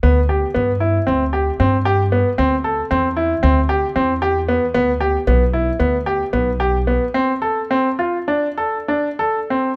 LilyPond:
<<
  \new Staff \with { instrumentName = "Grand piano" } { \time 9/8 \key c \major \tempo 4. = 76 b8 g'8 b8 e'8 c'8 g'8 c'8 g'8 b8 | c'8 a'8 c'8 e'8 c'8 g'8 c'8 g'8 b8 | b8 g'8 b8 e'8 b8 g'8 b8 g'8 b8 | c'8 a'8 c'8 f'8 d'8 a'8 d'8 a'8 c'8 | }
  \new Staff \with { instrumentName = "Upright bass" } { \clef bass \time 9/8 \key c \major d,4 g,4 d,4 g,4. | d,4 e,4 d,4 e,4. | d,4 b,,4 d,4 b,,4. | r1 r8 | }
>>